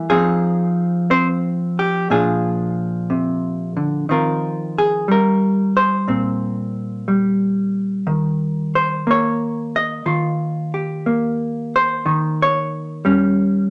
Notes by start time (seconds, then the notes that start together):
Already playing: E3 A#3
0.10 F3 C4 D#4 G#4
1.10 C4 C5
1.79 G4
2.10 A#2 F3 D4 F4 G#4
3.10 C3
3.77 D3
4.09 D#3 C4 F4 A#4
4.78 G#4
5.08 G3 A#4
5.77 C5
6.08 A#2 C4
7.08 G3
8.07 D#3
8.75 C5
9.07 A#3 C#5
9.76 D#5
10.06 D#3 F4
10.74 G4
11.06 A#3
11.76 C5
12.06 D#3
12.42 C#5
13.05 G3 C#4